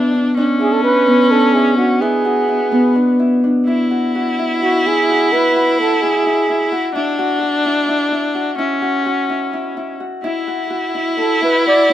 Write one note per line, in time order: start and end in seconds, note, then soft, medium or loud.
0.00 1.07 B3 medium
0.00 0.14 D4 medium
0.00 0.34 D4 loud
0.00 0.60 E4 medium
0.00 1.41 F#4 medium
0.14 0.37 D4 medium
0.37 2.03 C#4 medium
0.37 0.83 D4 medium
0.60 1.54 E4 medium
0.60 0.74 G#4 medium
0.72 0.83 A4 medium
0.83 1.31 D4 medium
0.83 1.32 B4 medium
1.07 2.71 B3 medium
1.31 1.77 D4 medium
1.31 1.55 A4 medium
1.53 2.01 E4 medium
1.53 1.77 G#4 medium
1.77 2.95 D4 medium
1.77 2.03 F#4 medium
2.01 3.43 B3 medium
2.01 2.48 E4 medium
2.01 2.95 G#4 medium
2.25 3.90 F#4 medium
2.48 3.19 E4 medium
2.72 5.82 B3 medium
2.95 3.43 D4 medium
3.19 3.67 E4 medium
3.44 6.24 D4 medium
3.67 6.90 E4 loud
3.67 4.39 E4 medium
3.91 4.15 F#4 medium
4.15 5.09 F#4 medium
4.39 4.62 E4 medium
4.63 4.85 E4 medium
4.63 4.88 F#4 medium
4.86 5.32 E4 medium
4.86 5.34 G#4 medium
5.09 5.56 F#4 medium
5.33 6.03 E4 medium
5.33 5.79 B4 medium
5.56 5.79 F#4 medium
5.80 6.71 F#4 medium
5.80 6.04 A4 medium
6.02 6.26 E4 medium
6.02 6.72 G#4 medium
6.26 6.49 E4 medium
6.49 6.95 E4 medium
6.72 7.18 F#4 medium
6.95 8.55 D4 loud
6.95 7.65 E4 medium
7.19 7.42 F#4 medium
7.42 8.34 F#4 medium
7.65 7.88 E4 medium
7.88 8.11 E4 medium
8.12 8.58 E4 medium
8.35 8.82 F#4 medium
8.58 9.96 C#4 medium
8.58 9.29 E4 medium
8.82 9.05 F#4 medium
9.06 10.00 F#4 medium
9.29 9.53 E4 medium
9.53 9.77 E4 medium
9.77 10.23 E4 medium
10.00 10.47 F#4 medium
10.23 11.93 E4 loud
10.23 10.94 E4 medium
10.47 10.70 F#4 medium
10.70 11.66 F#4 medium
10.94 11.18 E4 medium
11.18 11.41 E4 medium
11.18 11.40 A4 medium
11.42 11.89 E4 medium
11.42 11.65 B4 medium
11.66 11.93 F#4 medium
11.66 11.93 D5 medium
11.89 11.93 E4 medium